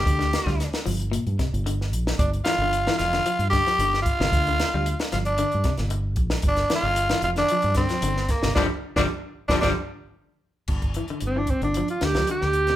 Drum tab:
CC |----------------|----------------|----------------|----------------|
HH |xxx-xxoxxxxxx-x-|xxx-xxxxxxxxx-x-|xxx-xxxxxxxxx-x-|xxx-xxxxxxxxx-x-|
SD |-ooooo----o--o-o|--o--ooo--oo-o-o|--o--oo---oo---o|-oo--o-o--oo-ooo|
BD |o--o------o-----|o---------o---o-|o---------o---o-|o---------o---o-|

CC |----------------|x---------------|
HH |----------------|-xxxx-xxxxxxx-xx|
SD |o--o---oo-------|----------oo-o-o|
BD |o--o---oo-------|oo----o----o----|